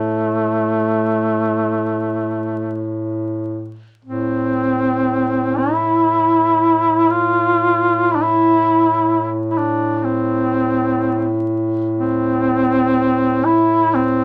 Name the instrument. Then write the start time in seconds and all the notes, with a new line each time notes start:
duduk
Already playing: A2 A3
4.05 A2 C4
5.58 E4
7.09 F4
8.11 E4
8.15 D4
8.23 E4
9.51 E4
9.58 D4
9.98 D4
10.04 C4
11.97 C4
13.45 E4
13.94 C4